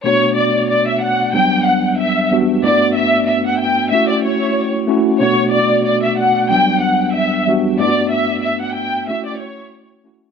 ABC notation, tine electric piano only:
X:1
M:4/4
L:1/8
Q:"Swing 16ths" 1/4=93
K:Bm
V:1 name="Tine electric piano"
[B,,A,B,DF]2 z2 [E,,F,G,B,D]2 z [E,,G,B,DF] | [G,,A,B,DEF]2 z2 [A,CEF]2 z [A,CEF] | [B,,A,B,DF]2 z2 [E,,F,G,B,D]2 z [E,,G,B,DF] | [G,,A,B,DEF]2 z2 [A,CEF]2 z [A,CEF] |]